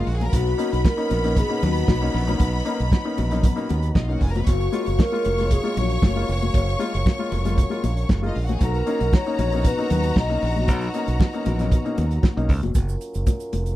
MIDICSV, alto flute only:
0, 0, Header, 1, 2, 480
1, 0, Start_track
1, 0, Key_signature, 6, "major"
1, 0, Tempo, 517688
1, 303, Time_signature, 4, 2, 24, 8
1, 12757, End_track
2, 0, Start_track
2, 0, Title_t, "Alto flute"
2, 0, Program_c, 0, 73
2, 314, Note_on_c, 0, 66, 95
2, 796, Note_on_c, 0, 70, 110
2, 810, Note_off_c, 0, 66, 0
2, 1285, Note_on_c, 0, 68, 94
2, 1299, Note_off_c, 0, 70, 0
2, 1519, Note_on_c, 0, 66, 89
2, 1533, Note_off_c, 0, 68, 0
2, 1992, Note_off_c, 0, 66, 0
2, 4153, Note_on_c, 0, 66, 95
2, 4635, Note_on_c, 0, 70, 120
2, 4649, Note_off_c, 0, 66, 0
2, 5119, Note_on_c, 0, 68, 100
2, 5133, Note_off_c, 0, 70, 0
2, 5361, Note_on_c, 0, 66, 80
2, 5375, Note_off_c, 0, 68, 0
2, 5832, Note_off_c, 0, 66, 0
2, 7998, Note_on_c, 0, 70, 89
2, 8472, Note_on_c, 0, 73, 108
2, 8486, Note_off_c, 0, 70, 0
2, 8964, Note_on_c, 0, 71, 98
2, 8978, Note_off_c, 0, 73, 0
2, 9437, Note_on_c, 0, 75, 103
2, 9451, Note_off_c, 0, 71, 0
2, 9908, Note_off_c, 0, 75, 0
2, 12757, End_track
0, 0, End_of_file